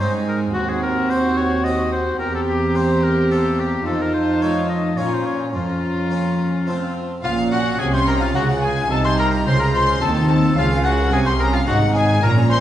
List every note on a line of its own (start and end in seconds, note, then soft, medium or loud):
0.00 0.51 G#2 soft
0.00 0.55 G#2 medium
0.00 0.51 G#3 soft
0.00 2.20 C4 medium
0.00 0.51 C4 soft
0.00 0.51 D#4 medium
0.00 0.51 D#4 soft
0.00 0.12 C5 medium
0.00 0.55 G#5 soft
0.28 0.40 A#4 medium
0.53 2.16 D#2 soft
0.53 2.17 D#2 medium
0.53 0.71 F#4 medium
0.53 2.17 F#4 medium
0.53 2.17 F#5 medium
0.70 0.82 G#4 medium
0.83 1.12 A#4 medium
1.10 1.50 C4 soft
1.10 1.50 F#4 soft
1.10 1.38 C5 medium
1.37 1.66 C#5 medium
1.64 2.05 C4 soft
1.64 2.05 F#4 soft
1.64 1.91 D#5 medium
1.92 2.18 C5 medium
2.19 3.82 E2 soft
2.19 3.83 E2 medium
2.19 3.83 C4 medium
2.19 3.82 G4 medium
2.19 2.33 A#4 medium
2.19 3.83 A#5 medium
2.34 2.41 A4 medium
2.48 2.77 G4 medium
2.75 3.15 A#3 soft
2.75 3.15 C4 soft
2.75 3.16 G4 soft
2.75 3.05 C5 medium
3.03 3.31 A#4 medium
3.31 3.71 A#3 soft
3.31 3.71 C4 soft
3.31 3.71 G4 soft
3.31 3.61 A4 medium
3.59 3.86 G4 medium
3.85 4.93 F2 medium
3.85 4.94 F2 soft
3.85 4.94 D#4 medium
3.85 4.94 F4 medium
3.85 4.02 A4 medium
3.85 4.93 A5 medium
4.01 4.13 A#4 medium
4.14 4.43 C5 medium
4.42 4.82 A3 soft
4.42 4.82 D#4 soft
4.42 4.82 F4 soft
4.42 4.68 C#5 medium
4.69 4.99 D#5 medium
4.97 5.54 A#2 medium
4.97 5.50 A#2 soft
4.97 5.50 A#3 soft
4.97 5.50 C#4 soft
4.97 5.53 C#4 medium
4.97 5.52 F4 soft
4.97 5.51 F4 soft
4.97 5.15 C#5 medium
4.97 5.53 A#5 soft
5.13 5.25 C5 medium
5.26 5.39 C#5 medium
5.53 6.99 F2 soft
5.53 7.04 F2 medium
5.53 6.65 C#4 soft
5.53 6.65 F4 medium
5.53 6.93 F4 medium
5.53 6.65 A#5 medium
6.10 6.51 A#3 soft
6.10 6.52 C#4 soft
6.10 6.52 F4 soft
6.67 7.20 A3 soft
6.67 7.04 C4 soft
6.67 7.20 C4 soft
6.67 7.03 F4 soft
6.67 7.20 F4 soft
6.67 7.04 A5 soft
7.23 7.75 A#1 medium
7.23 7.75 A#2 medium
7.23 7.76 A#2 medium
7.23 8.87 C#4 medium
7.23 7.36 F4 medium
7.23 7.49 F5 medium
7.23 7.32 F5 medium
7.37 7.52 F4 soft
7.51 7.66 C#4 medium
7.51 7.80 F#4 medium
7.51 7.79 F#5 medium
7.66 7.80 F4 soft
7.79 8.34 C2 medium
7.79 8.34 C3 medium
7.79 8.32 C3 medium
7.79 7.93 G#4 medium
7.79 7.85 G#5 medium
7.79 7.86 G#5 medium
7.93 8.08 F4 soft
7.93 8.00 C5 medium
7.93 8.07 C6 medium
8.07 8.21 D#4 soft
8.07 8.13 A#4 medium
8.07 8.21 A#5 medium
8.21 8.36 F4 medium
8.21 8.35 F4 medium
8.21 8.35 F5 medium
8.21 8.36 F5 medium
8.35 8.89 C#2 medium
8.35 8.87 C#3 medium
8.35 8.90 C#3 medium
8.35 8.49 D#4 medium
8.35 8.48 F#4 medium
8.35 8.43 F#5 medium
8.35 8.63 F#5 medium
8.49 8.64 F4 medium
8.62 8.89 G#4 medium
8.62 8.90 G#5 medium
8.62 8.91 G#5 loud
8.77 8.91 F4 medium
8.90 9.45 C2 medium
8.90 9.45 C3 medium
8.90 9.42 C3 medium
8.90 9.46 D#4 medium
8.90 9.07 A4 medium
8.90 8.96 A5 medium
8.90 9.05 A5 loud
9.04 9.19 F4 medium
9.04 9.19 C5 medium
9.04 9.10 C6 medium
9.04 9.19 C6 medium
9.18 9.33 D#4 medium
9.18 9.31 A#4 medium
9.18 9.27 A#5 medium
9.18 9.47 A#5 medium
9.32 9.47 F4 medium
9.46 10.02 C#2 medium
9.46 9.98 C#3 medium
9.46 10.02 C#3 medium
9.46 10.01 F4 medium
9.46 9.59 C5 medium
9.46 9.60 C6 loud
9.46 9.60 C6 medium
9.59 9.74 F4 medium
9.59 9.66 A#4 medium
9.59 9.74 A#5 medium
9.59 9.75 A#5 medium
9.74 9.88 D#4 soft
9.74 10.01 C5 medium
9.74 10.01 C6 medium
9.74 10.03 C6 medium
9.88 10.03 F4 medium
10.01 10.56 D#2 medium
10.01 10.53 D#3 medium
10.01 10.56 D#3 medium
10.01 10.57 C4 medium
10.01 10.15 D#4 soft
10.01 10.28 A4 medium
10.01 10.10 A5 medium
10.01 10.29 A5 medium
10.15 10.30 F4 medium
10.29 10.56 A4 medium
10.29 10.37 A5 medium
10.29 10.57 A5 loud
10.43 10.57 F4 medium
10.56 11.11 C#2 medium
10.56 11.08 C#3 medium
10.56 11.11 C#3 medium
10.56 11.67 C#4 medium
10.56 10.86 F4 medium
10.56 10.84 F5 medium
10.56 10.66 F5 loud
10.71 10.85 C#5 medium
10.83 10.98 F4 medium
10.83 11.12 F#4 medium
10.83 10.92 F#5 medium
10.83 11.12 F#5 medium
10.98 11.12 A#4 medium
11.11 11.67 C2 medium
11.11 11.63 C3 medium
11.11 11.67 C3 medium
11.11 11.26 C#4 medium
11.11 11.19 G#4 medium
11.11 11.18 G#5 medium
11.11 11.26 G#5 loud
11.25 11.40 A#4 medium
11.25 11.32 C5 medium
11.25 11.32 C6 medium
11.25 11.40 C6 medium
11.39 11.53 G#4 soft
11.39 11.46 A#4 medium
11.39 11.53 A#5 medium
11.39 11.54 A#5 loud
11.53 11.59 F4 medium
11.53 11.68 A#4 medium
11.53 11.67 F5 medium
11.53 11.68 F5 medium
11.67 12.22 G#1 medium
11.67 12.18 G#2 medium
11.67 12.22 G#2 medium
11.67 12.23 D#4 medium
11.67 11.79 F#4 medium
11.67 11.81 G#4 medium
11.67 11.75 F#5 medium
11.67 11.95 F#5 medium
11.81 11.96 A#4 medium
11.94 12.09 C#4 medium
11.94 12.22 G#4 medium
11.94 12.22 G#5 loud
11.94 12.22 G#5 medium
12.08 12.22 A#4 medium
12.22 12.60 A#1 medium
12.22 12.60 A#2 medium
12.22 12.60 C#4 medium
12.22 12.35 A#4 medium
12.22 12.30 A#5 medium
12.22 12.50 A#5 loud
12.36 12.51 A#4 medium
12.50 12.60 C#4 medium
12.50 12.60 C5 medium
12.50 12.60 C6 medium
12.50 12.60 C6 loud